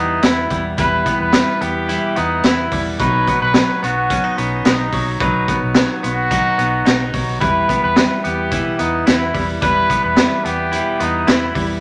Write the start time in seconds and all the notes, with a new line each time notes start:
Already playing: E2 E3 G3 B3 D#4 E4
0.21 E2 E3 G3 B3 E4, snare, closed hi-hat
0.49 E2 E3 G3 B3 E4, kick, closed hi-hat
0.77 E2 B2 E3 G3 B3 E4 B4, kick, closed hi-hat
1.04 E3 G3 B3 E4, kick, closed hi-hat
1.20 E2 B4
1.33 E3 G3 B3 E4, snare, closed hi-hat
1.61 E2 E3 G3 B3 E4 G4, closed hi-hat
1.89 E2 B2 E3 G3 B3 E4, closed hi-hat
2.16 E2 E3 B3 D#4 E4, closed hi-hat
2.43 E2 E3 G3 B3 E4, snare, closed hi-hat
2.72 E2 E3 G3 B3 E4, kick, open hi-hat
3.00 B1 B2 F#3 B3 D#4 F#4 B4, kick, closed hi-hat
3.27 B3 D#4 F#4, kick, closed hi-hat
3.41 B1 B4
3.54 F#3 B3 D#4 F#4, snare, closed hi-hat
3.83 B1 B3 D#4 F#4, closed hi-hat
4.10 B2 F#3 B3 C#4 D#4 F#4, kick, closed hi-hat
4.24 D#4
4.37 B1 B3 C#4 D#4 F#4, closed hi-hat
4.65 B1 F#3 B3 D#4 F#4, snare, closed hi-hat
4.92 B1 F#3 B3 D#4 F#4, kick, open hi-hat
5.20 B1 B2 F#3 B3 D#4 F#4 B4, kick, closed hi-hat
5.48 B3 D#4 F#4, kick, closed hi-hat
5.63 B1
5.75 F#3 B3 D#4 F#4, snare, closed hi-hat
6.03 B1 B3 D#4 F#4, closed hi-hat
6.31 B2 F#3 B3 D#4 F#4, kick, closed hi-hat
6.59 B1 B3 D#4 F#4, closed hi-hat
6.86 B1 F#3 B3 D#4 F#4, snare, closed hi-hat
7.13 B1 F#3 B3 D#4 F#4, kick, open hi-hat
7.41 E2 B2 E3 G3 B3 E4 B4, kick, closed hi-hat
7.69 E3 G3 B3 E4, kick, closed hi-hat
7.83 E2 B4
7.96 E3 G3 B3 E4, snare, closed hi-hat
8.23 E2 E3 G3 B3 E4 G4, closed hi-hat
8.51 E2 B2 E3 G3 B3 E4, kick, closed hi-hat
8.78 E2 E3 G3 B3 D#4 E4, closed hi-hat
9.06 E2 E3 G3 B3 E4, snare, closed hi-hat
9.34 E2 E3 G3 B3 E4, kick, open hi-hat
9.62 E2 B2 E3 G3 B3 E4 B4, kick, closed hi-hat
9.90 E3 G3 B3 E4, kick, closed hi-hat
10.04 E2 B4
10.16 E3 G3 E4, snare, closed hi-hat
10.45 E2 E3 G3 B3 E4 G4, closed hi-hat
10.72 E2 B2 E3 G3 B3 E4, closed hi-hat
11.00 E2 E3 G3 B3 D#4 E4, closed hi-hat
11.27 E2 E3 G3 E4, snare, closed hi-hat
11.55 E2 E3 G3 B3 E4, kick, open hi-hat